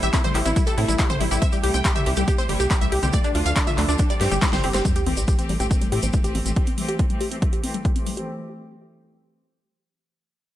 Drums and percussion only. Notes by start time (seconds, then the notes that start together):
0.02 closed hi-hat, shaker
0.13 kick, clap, closed hi-hat, shaker
0.24 closed hi-hat, mid tom, shaker
0.35 clap, open hi-hat
0.46 closed hi-hat, shaker
0.56 kick, closed hi-hat, shaker
0.67 closed hi-hat, shaker
0.78 open hi-hat
0.89 closed hi-hat, shaker
0.99 kick, clap, closed hi-hat, shaker
1.10 closed hi-hat, mid tom, shaker
1.21 open hi-hat
1.31 closed hi-hat, shaker
1.42 kick, closed hi-hat, shaker
1.52 closed hi-hat, shaker
1.64 open hi-hat
1.74 closed hi-hat, shaker
1.85 kick, clap, closed hi-hat, shaker
1.96 closed hi-hat, mid tom, shaker
2.06 open hi-hat
2.16 closed hi-hat, shaker
2.28 kick, closed hi-hat, shaker
2.39 closed hi-hat, shaker
2.49 open hi-hat
2.60 closed hi-hat, shaker
2.71 kick, clap, closed hi-hat, shaker
2.81 closed hi-hat, shaker
2.92 open hi-hat
3.03 closed hi-hat, mid tom, shaker
3.13 kick, closed hi-hat, shaker
3.24 closed hi-hat, shaker
3.35 open hi-hat
3.46 closed hi-hat, shaker
3.56 kick, clap, closed hi-hat, shaker
3.67 closed hi-hat, mid tom, shaker
3.78 clap, open hi-hat
3.89 closed hi-hat, shaker
3.98 kick, closed hi-hat, shaker
4.10 closed hi-hat, shaker
4.21 snare, open hi-hat
4.32 closed hi-hat, shaker
4.42 kick, snare, clap, closed hi-hat, shaker
4.53 snare, closed hi-hat, mid tom, shaker
4.64 open hi-hat
4.74 snare, closed hi-hat, shaker
4.85 kick, closed hi-hat, shaker
4.96 closed hi-hat, shaker
5.06 open hi-hat
5.17 closed hi-hat, shaker
5.28 kick, closed hi-hat, shaker
5.39 closed hi-hat, shaker
5.49 open hi-hat
5.60 closed hi-hat, shaker
5.71 kick, closed hi-hat, shaker
5.81 closed hi-hat, shaker
5.92 open hi-hat
6.03 closed hi-hat, shaker
6.13 kick, closed hi-hat, shaker
6.24 closed hi-hat, shaker
6.35 open hi-hat
6.46 closed hi-hat, shaker
6.56 kick, closed hi-hat
6.67 closed hi-hat
6.78 open hi-hat
6.89 closed hi-hat
6.99 kick, closed hi-hat
7.10 closed hi-hat
7.21 open hi-hat
7.31 closed hi-hat
7.42 kick, closed hi-hat
7.53 closed hi-hat
7.64 open hi-hat
7.74 closed hi-hat
7.85 kick, closed hi-hat
7.96 closed hi-hat
8.07 open hi-hat
8.17 closed hi-hat